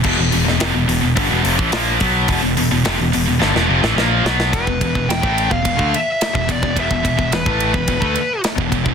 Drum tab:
CC |x---------------|----------------|----------------|----------------|
RD |----------------|----------------|x-x-x-x-x-x-x-x-|x-x-x-x-x-x-x-x-|
HH |--o-o-o-o-o-o-o-|o-o-o-o---------|----------------|----------------|
SD |---oo-------o---|----o---oo-oo-oo|----o-------o---|----o-------o---|
BD |o-------o--o--o-|o---------------|oooo-o-ooo---ooo|oooo-o-ooo---ooo|